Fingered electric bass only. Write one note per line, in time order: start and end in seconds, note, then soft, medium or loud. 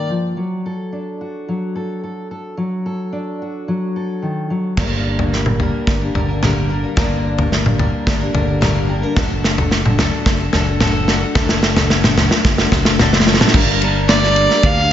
4.77 5.70 G1 medium
5.87 6.11 G1 medium
6.14 6.84 G1 medium
6.97 7.90 G1 medium
8.07 8.30 G1 medium
8.34 9.04 G1 medium
9.17 10.09 F#1 medium
10.26 10.49 F#1 medium
10.53 11.23 F#1 medium
11.35 12.28 F#1 loud
12.45 12.68 F#1 medium
12.72 13.41 F#1 medium
13.54 14.47 G1 loud
14.63 14.93 D2 loud